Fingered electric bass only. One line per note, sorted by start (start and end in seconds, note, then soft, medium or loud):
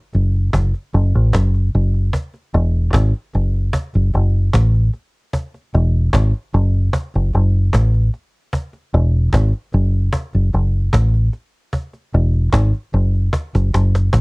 0.15 0.49 F#1 medium
0.54 0.72 F#1 medium
0.94 1.12 F#1 medium
1.15 1.32 A1 medium
1.34 1.69 F#1 medium
1.75 2.09 F#1 loud
2.54 2.89 E1 loud
2.94 3.12 G#1 loud
3.35 3.69 F#1 medium
3.95 4.11 F#1 medium
4.14 4.49 F#1 medium
4.54 4.89 A1 medium
5.74 6.09 E1 loud
6.14 6.31 G#1 medium
6.54 6.89 F#1 loud
7.15 7.31 F#1 medium
7.34 7.69 F#1 medium
7.74 8.08 A1 medium
8.94 9.29 E1 loud
9.33 9.51 G#1 medium
9.74 10.08 F#1 medium
10.35 10.51 F#1 medium
10.54 10.88 F#1 medium
10.93 11.28 A1 medium
12.14 12.49 E1 medium
12.53 12.71 G#1 loud
12.94 13.28 F#1 medium
13.55 13.71 F#1 medium
13.74 14.09 F#1 medium
14.13 14.21 A1 medium